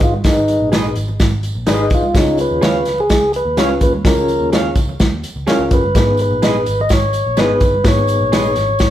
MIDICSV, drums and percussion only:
0, 0, Header, 1, 2, 480
1, 0, Start_track
1, 0, Tempo, 475059
1, 252, Time_signature, 4, 2, 24, 8
1, 8995, End_track
2, 0, Start_track
2, 0, Title_t, "Drums"
2, 1, Note_on_c, 9, 42, 65
2, 10, Note_on_c, 9, 36, 88
2, 20, Note_on_c, 9, 54, 51
2, 102, Note_off_c, 9, 42, 0
2, 111, Note_off_c, 9, 36, 0
2, 121, Note_off_c, 9, 54, 0
2, 136, Note_on_c, 9, 63, 72
2, 237, Note_off_c, 9, 63, 0
2, 242, Note_on_c, 9, 42, 78
2, 249, Note_on_c, 9, 36, 95
2, 249, Note_on_c, 9, 38, 91
2, 260, Note_on_c, 9, 54, 90
2, 343, Note_off_c, 9, 42, 0
2, 350, Note_off_c, 9, 36, 0
2, 350, Note_off_c, 9, 38, 0
2, 361, Note_off_c, 9, 54, 0
2, 484, Note_on_c, 9, 54, 48
2, 486, Note_on_c, 9, 42, 59
2, 498, Note_on_c, 9, 62, 43
2, 585, Note_off_c, 9, 54, 0
2, 587, Note_off_c, 9, 42, 0
2, 599, Note_off_c, 9, 62, 0
2, 732, Note_on_c, 9, 42, 79
2, 736, Note_on_c, 9, 38, 109
2, 736, Note_on_c, 9, 54, 83
2, 744, Note_on_c, 9, 63, 55
2, 833, Note_off_c, 9, 42, 0
2, 837, Note_off_c, 9, 38, 0
2, 837, Note_off_c, 9, 54, 0
2, 845, Note_off_c, 9, 63, 0
2, 966, Note_on_c, 9, 42, 67
2, 976, Note_on_c, 9, 62, 31
2, 982, Note_on_c, 9, 54, 50
2, 1067, Note_off_c, 9, 42, 0
2, 1077, Note_off_c, 9, 62, 0
2, 1083, Note_off_c, 9, 54, 0
2, 1093, Note_on_c, 9, 64, 64
2, 1194, Note_off_c, 9, 64, 0
2, 1209, Note_on_c, 9, 54, 76
2, 1210, Note_on_c, 9, 38, 99
2, 1213, Note_on_c, 9, 36, 86
2, 1216, Note_on_c, 9, 42, 89
2, 1216, Note_on_c, 9, 64, 66
2, 1310, Note_off_c, 9, 54, 0
2, 1311, Note_off_c, 9, 38, 0
2, 1314, Note_off_c, 9, 36, 0
2, 1317, Note_off_c, 9, 42, 0
2, 1317, Note_off_c, 9, 64, 0
2, 1446, Note_on_c, 9, 42, 72
2, 1458, Note_on_c, 9, 54, 50
2, 1547, Note_off_c, 9, 42, 0
2, 1559, Note_off_c, 9, 54, 0
2, 1683, Note_on_c, 9, 42, 83
2, 1686, Note_on_c, 9, 54, 82
2, 1688, Note_on_c, 9, 38, 94
2, 1691, Note_on_c, 9, 63, 60
2, 1784, Note_off_c, 9, 42, 0
2, 1787, Note_off_c, 9, 54, 0
2, 1789, Note_off_c, 9, 38, 0
2, 1792, Note_off_c, 9, 63, 0
2, 1921, Note_on_c, 9, 42, 61
2, 1929, Note_on_c, 9, 36, 90
2, 1941, Note_on_c, 9, 54, 50
2, 2022, Note_off_c, 9, 42, 0
2, 2030, Note_off_c, 9, 36, 0
2, 2042, Note_off_c, 9, 54, 0
2, 2047, Note_on_c, 9, 63, 72
2, 2148, Note_off_c, 9, 63, 0
2, 2168, Note_on_c, 9, 36, 96
2, 2168, Note_on_c, 9, 62, 46
2, 2172, Note_on_c, 9, 42, 80
2, 2172, Note_on_c, 9, 54, 86
2, 2179, Note_on_c, 9, 38, 93
2, 2269, Note_off_c, 9, 36, 0
2, 2269, Note_off_c, 9, 62, 0
2, 2273, Note_off_c, 9, 42, 0
2, 2274, Note_off_c, 9, 54, 0
2, 2280, Note_off_c, 9, 38, 0
2, 2400, Note_on_c, 9, 54, 52
2, 2413, Note_on_c, 9, 42, 62
2, 2417, Note_on_c, 9, 62, 42
2, 2501, Note_off_c, 9, 54, 0
2, 2514, Note_off_c, 9, 42, 0
2, 2518, Note_off_c, 9, 62, 0
2, 2651, Note_on_c, 9, 54, 88
2, 2652, Note_on_c, 9, 42, 76
2, 2657, Note_on_c, 9, 38, 105
2, 2670, Note_on_c, 9, 63, 56
2, 2752, Note_off_c, 9, 54, 0
2, 2753, Note_off_c, 9, 42, 0
2, 2758, Note_off_c, 9, 38, 0
2, 2771, Note_off_c, 9, 63, 0
2, 2884, Note_on_c, 9, 42, 67
2, 2896, Note_on_c, 9, 38, 36
2, 2898, Note_on_c, 9, 54, 51
2, 2907, Note_on_c, 9, 62, 33
2, 2985, Note_off_c, 9, 42, 0
2, 2997, Note_off_c, 9, 38, 0
2, 2999, Note_off_c, 9, 54, 0
2, 3008, Note_off_c, 9, 62, 0
2, 3014, Note_on_c, 9, 64, 67
2, 3115, Note_off_c, 9, 64, 0
2, 3127, Note_on_c, 9, 54, 75
2, 3132, Note_on_c, 9, 38, 104
2, 3135, Note_on_c, 9, 36, 77
2, 3139, Note_on_c, 9, 42, 90
2, 3228, Note_off_c, 9, 54, 0
2, 3233, Note_off_c, 9, 38, 0
2, 3236, Note_off_c, 9, 36, 0
2, 3240, Note_off_c, 9, 42, 0
2, 3365, Note_on_c, 9, 54, 50
2, 3373, Note_on_c, 9, 42, 71
2, 3466, Note_off_c, 9, 54, 0
2, 3474, Note_off_c, 9, 42, 0
2, 3610, Note_on_c, 9, 42, 84
2, 3613, Note_on_c, 9, 54, 86
2, 3614, Note_on_c, 9, 63, 59
2, 3615, Note_on_c, 9, 38, 88
2, 3711, Note_off_c, 9, 42, 0
2, 3714, Note_off_c, 9, 54, 0
2, 3715, Note_off_c, 9, 63, 0
2, 3716, Note_off_c, 9, 38, 0
2, 3848, Note_on_c, 9, 42, 68
2, 3851, Note_on_c, 9, 36, 90
2, 3860, Note_on_c, 9, 54, 51
2, 3949, Note_off_c, 9, 42, 0
2, 3952, Note_off_c, 9, 36, 0
2, 3961, Note_off_c, 9, 54, 0
2, 3979, Note_on_c, 9, 63, 70
2, 4080, Note_off_c, 9, 63, 0
2, 4090, Note_on_c, 9, 36, 99
2, 4091, Note_on_c, 9, 42, 86
2, 4096, Note_on_c, 9, 62, 46
2, 4097, Note_on_c, 9, 38, 94
2, 4101, Note_on_c, 9, 54, 86
2, 4191, Note_off_c, 9, 36, 0
2, 4192, Note_off_c, 9, 42, 0
2, 4197, Note_off_c, 9, 62, 0
2, 4199, Note_off_c, 9, 38, 0
2, 4202, Note_off_c, 9, 54, 0
2, 4327, Note_on_c, 9, 54, 55
2, 4336, Note_on_c, 9, 42, 60
2, 4338, Note_on_c, 9, 62, 44
2, 4428, Note_off_c, 9, 54, 0
2, 4437, Note_off_c, 9, 42, 0
2, 4439, Note_off_c, 9, 62, 0
2, 4574, Note_on_c, 9, 42, 81
2, 4575, Note_on_c, 9, 54, 85
2, 4577, Note_on_c, 9, 63, 64
2, 4579, Note_on_c, 9, 38, 97
2, 4675, Note_off_c, 9, 42, 0
2, 4676, Note_off_c, 9, 54, 0
2, 4678, Note_off_c, 9, 63, 0
2, 4680, Note_off_c, 9, 38, 0
2, 4804, Note_on_c, 9, 42, 63
2, 4806, Note_on_c, 9, 36, 86
2, 4816, Note_on_c, 9, 54, 56
2, 4818, Note_on_c, 9, 62, 29
2, 4905, Note_off_c, 9, 42, 0
2, 4907, Note_off_c, 9, 36, 0
2, 4917, Note_off_c, 9, 54, 0
2, 4919, Note_off_c, 9, 62, 0
2, 4941, Note_on_c, 9, 64, 69
2, 5042, Note_off_c, 9, 64, 0
2, 5048, Note_on_c, 9, 54, 76
2, 5051, Note_on_c, 9, 38, 105
2, 5057, Note_on_c, 9, 36, 74
2, 5058, Note_on_c, 9, 42, 88
2, 5063, Note_on_c, 9, 64, 64
2, 5149, Note_off_c, 9, 54, 0
2, 5153, Note_off_c, 9, 38, 0
2, 5158, Note_off_c, 9, 36, 0
2, 5159, Note_off_c, 9, 42, 0
2, 5164, Note_off_c, 9, 64, 0
2, 5289, Note_on_c, 9, 54, 49
2, 5293, Note_on_c, 9, 42, 74
2, 5390, Note_off_c, 9, 54, 0
2, 5394, Note_off_c, 9, 42, 0
2, 5531, Note_on_c, 9, 42, 81
2, 5532, Note_on_c, 9, 54, 82
2, 5533, Note_on_c, 9, 63, 61
2, 5536, Note_on_c, 9, 38, 89
2, 5632, Note_off_c, 9, 42, 0
2, 5633, Note_off_c, 9, 54, 0
2, 5634, Note_off_c, 9, 63, 0
2, 5637, Note_off_c, 9, 38, 0
2, 5767, Note_on_c, 9, 42, 68
2, 5771, Note_on_c, 9, 36, 96
2, 5776, Note_on_c, 9, 54, 49
2, 5868, Note_off_c, 9, 42, 0
2, 5872, Note_off_c, 9, 36, 0
2, 5877, Note_off_c, 9, 54, 0
2, 5897, Note_on_c, 9, 63, 67
2, 5998, Note_off_c, 9, 63, 0
2, 6012, Note_on_c, 9, 36, 94
2, 6013, Note_on_c, 9, 54, 76
2, 6017, Note_on_c, 9, 42, 87
2, 6017, Note_on_c, 9, 62, 47
2, 6024, Note_on_c, 9, 38, 96
2, 6113, Note_off_c, 9, 36, 0
2, 6114, Note_off_c, 9, 54, 0
2, 6118, Note_off_c, 9, 42, 0
2, 6118, Note_off_c, 9, 62, 0
2, 6125, Note_off_c, 9, 38, 0
2, 6237, Note_on_c, 9, 54, 50
2, 6255, Note_on_c, 9, 42, 62
2, 6256, Note_on_c, 9, 62, 42
2, 6338, Note_off_c, 9, 54, 0
2, 6356, Note_off_c, 9, 42, 0
2, 6357, Note_off_c, 9, 62, 0
2, 6492, Note_on_c, 9, 54, 86
2, 6493, Note_on_c, 9, 42, 86
2, 6498, Note_on_c, 9, 38, 106
2, 6508, Note_on_c, 9, 63, 57
2, 6593, Note_off_c, 9, 54, 0
2, 6594, Note_off_c, 9, 42, 0
2, 6599, Note_off_c, 9, 38, 0
2, 6609, Note_off_c, 9, 63, 0
2, 6731, Note_on_c, 9, 54, 57
2, 6732, Note_on_c, 9, 42, 71
2, 6748, Note_on_c, 9, 62, 31
2, 6832, Note_off_c, 9, 54, 0
2, 6833, Note_off_c, 9, 42, 0
2, 6850, Note_off_c, 9, 62, 0
2, 6873, Note_on_c, 9, 64, 65
2, 6963, Note_on_c, 9, 54, 80
2, 6974, Note_off_c, 9, 64, 0
2, 6975, Note_on_c, 9, 38, 99
2, 6977, Note_on_c, 9, 36, 86
2, 6981, Note_on_c, 9, 42, 93
2, 7064, Note_off_c, 9, 54, 0
2, 7076, Note_off_c, 9, 38, 0
2, 7078, Note_off_c, 9, 36, 0
2, 7082, Note_off_c, 9, 42, 0
2, 7203, Note_on_c, 9, 54, 52
2, 7213, Note_on_c, 9, 42, 69
2, 7304, Note_off_c, 9, 54, 0
2, 7314, Note_off_c, 9, 42, 0
2, 7444, Note_on_c, 9, 54, 73
2, 7448, Note_on_c, 9, 42, 88
2, 7453, Note_on_c, 9, 38, 92
2, 7467, Note_on_c, 9, 63, 63
2, 7545, Note_off_c, 9, 54, 0
2, 7549, Note_off_c, 9, 42, 0
2, 7554, Note_off_c, 9, 38, 0
2, 7568, Note_off_c, 9, 63, 0
2, 7684, Note_on_c, 9, 42, 63
2, 7689, Note_on_c, 9, 36, 89
2, 7691, Note_on_c, 9, 54, 48
2, 7785, Note_off_c, 9, 42, 0
2, 7790, Note_off_c, 9, 36, 0
2, 7792, Note_off_c, 9, 54, 0
2, 7824, Note_on_c, 9, 63, 70
2, 7925, Note_off_c, 9, 63, 0
2, 7926, Note_on_c, 9, 42, 88
2, 7928, Note_on_c, 9, 36, 106
2, 7932, Note_on_c, 9, 38, 101
2, 7935, Note_on_c, 9, 54, 81
2, 7938, Note_on_c, 9, 62, 42
2, 8027, Note_off_c, 9, 42, 0
2, 8029, Note_off_c, 9, 36, 0
2, 8033, Note_off_c, 9, 38, 0
2, 8036, Note_off_c, 9, 54, 0
2, 8039, Note_off_c, 9, 62, 0
2, 8157, Note_on_c, 9, 54, 51
2, 8169, Note_on_c, 9, 42, 64
2, 8182, Note_on_c, 9, 62, 39
2, 8258, Note_off_c, 9, 54, 0
2, 8270, Note_off_c, 9, 42, 0
2, 8283, Note_off_c, 9, 62, 0
2, 8413, Note_on_c, 9, 42, 80
2, 8414, Note_on_c, 9, 54, 86
2, 8418, Note_on_c, 9, 38, 115
2, 8433, Note_on_c, 9, 63, 66
2, 8514, Note_off_c, 9, 42, 0
2, 8515, Note_off_c, 9, 54, 0
2, 8519, Note_off_c, 9, 38, 0
2, 8534, Note_off_c, 9, 63, 0
2, 8645, Note_on_c, 9, 42, 71
2, 8650, Note_on_c, 9, 54, 53
2, 8657, Note_on_c, 9, 38, 37
2, 8665, Note_on_c, 9, 62, 33
2, 8746, Note_off_c, 9, 42, 0
2, 8751, Note_off_c, 9, 54, 0
2, 8758, Note_off_c, 9, 38, 0
2, 8766, Note_off_c, 9, 62, 0
2, 8776, Note_on_c, 9, 64, 68
2, 8877, Note_off_c, 9, 64, 0
2, 8880, Note_on_c, 9, 54, 75
2, 8892, Note_on_c, 9, 38, 102
2, 8895, Note_on_c, 9, 36, 78
2, 8898, Note_on_c, 9, 42, 84
2, 8903, Note_on_c, 9, 64, 65
2, 8981, Note_off_c, 9, 54, 0
2, 8993, Note_off_c, 9, 38, 0
2, 8995, Note_off_c, 9, 36, 0
2, 8995, Note_off_c, 9, 42, 0
2, 8995, Note_off_c, 9, 64, 0
2, 8995, End_track
0, 0, End_of_file